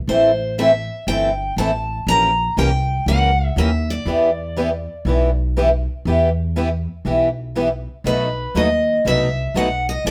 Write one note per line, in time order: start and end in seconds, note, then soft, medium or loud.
0.07 0.88 A1 medium
0.07 0.30 E3 medium
0.07 0.30 A3 medium
0.07 0.30 C4 medium
0.07 0.30 E4 medium
0.07 0.31 A4 medium
0.07 0.55 C5 medium
0.58 0.70 E3 medium
0.58 0.70 A3 medium
0.58 0.70 C4 medium
0.58 0.70 E4 medium
0.58 0.70 A4 medium
0.58 1.07 E5 medium
1.07 1.50 G1 medium
1.07 1.29 E3 medium
1.07 1.30 A3 medium
1.07 1.30 C4 medium
1.07 1.30 E4 medium
1.07 1.30 A4 medium
1.07 1.54 G5 medium
1.56 1.99 A1 medium
1.56 1.70 E3 medium
1.56 1.70 A3 medium
1.56 1.70 C4 medium
1.56 1.70 E4 medium
1.56 1.70 A4 medium
1.56 2.08 A5 medium
2.07 2.47 A#1 medium
2.07 2.29 E3 medium
2.07 2.29 A#3 medium
2.07 2.30 C#4 medium
2.07 2.30 G4 medium
2.07 2.30 A#4 medium
2.07 2.58 A#5 medium
2.57 2.99 C2 medium
2.57 2.69 E3 medium
2.57 2.69 A#3 medium
2.57 2.69 C#4 medium
2.57 2.69 G4 medium
2.57 2.69 A#4 medium
2.57 3.08 G5 medium
3.06 3.49 C#2 medium
3.06 3.29 E3 medium
3.06 3.29 A#3 medium
3.06 3.29 C#4 medium
3.06 3.29 G4 medium
3.06 3.30 A#4 medium
3.06 3.54 F#5 medium
3.56 3.99 D#2 medium
3.56 3.68 E3 medium
3.56 3.69 A#3 medium
3.56 3.69 C#4 medium
3.56 3.69 G4 medium
3.56 3.69 A#4 medium
3.56 3.90 E5 medium
3.90 5.35 D5 medium
4.06 4.86 E2 medium
4.06 4.28 E3 medium
4.06 4.28 B3 medium
4.06 4.29 E4 medium
4.06 4.29 G4 medium
4.06 4.29 B4 medium
4.56 4.68 E3 medium
4.56 4.68 B3 medium
4.56 4.68 E4 medium
4.56 4.68 G4 medium
4.56 4.69 B4 medium
5.05 5.85 B1 medium
5.05 5.28 E3 medium
5.05 5.28 B3 medium
5.05 5.28 E4 medium
5.05 5.29 G4 medium
5.05 5.29 B4 medium
5.57 5.68 E3 medium
5.57 5.68 B3 medium
5.57 5.68 E4 medium
5.57 5.68 G4 medium
5.57 5.68 B4 medium
6.05 6.86 E2 medium
6.05 6.28 E3 medium
6.05 6.28 B3 medium
6.05 6.29 E4 medium
6.05 6.29 G4 medium
6.05 6.29 B4 medium
6.56 6.67 E3 medium
6.56 6.68 B3 medium
6.56 6.68 E4 medium
6.56 6.68 G4 medium
6.56 6.68 B4 medium
7.05 7.85 B1 medium
7.05 7.27 E3 medium
7.05 7.28 B3 medium
7.05 7.28 E4 medium
7.05 7.28 G4 medium
7.05 7.28 B4 medium
7.55 7.67 E3 medium
7.55 7.67 B3 medium
7.55 7.67 E4 medium
7.55 7.68 G4 medium
7.55 7.68 B4 medium
8.04 8.45 B1 medium
8.04 8.27 B2 medium
8.04 8.27 F#3 medium
8.04 8.27 A3 medium
8.04 8.28 D#4 medium
8.04 8.28 F#4 medium
8.04 8.28 B4 medium
8.04 8.58 B4 medium
8.54 8.97 D#2 medium
8.54 8.67 B2 medium
8.54 8.67 F#3 medium
8.54 8.67 A3 medium
8.54 8.67 D#4 medium
8.54 8.67 F#4 medium
8.54 8.67 B4 medium
8.54 9.03 D#5 medium
9.05 9.48 C2 medium
9.05 9.27 B2 medium
9.05 9.27 F#3 medium
9.05 9.27 A3 medium
9.05 9.28 D#4 medium
9.05 9.28 F#4 medium
9.05 9.28 B4 medium
9.05 9.57 E5 medium
9.54 9.97 B1 medium
9.54 9.67 B2 medium
9.54 9.67 F#3 medium
9.54 9.67 A3 medium
9.54 9.67 D#4 medium
9.54 9.67 F#4 medium
9.54 9.67 B4 medium
9.54 9.86 F#5 medium
9.89 10.05 D#5 medium
10.05 10.11 A1 medium
10.05 10.11 E3 medium
10.05 10.11 A3 medium
10.05 10.11 C4 medium
10.05 10.11 E4 medium
10.05 10.11 A4 medium
10.05 10.11 D5 medium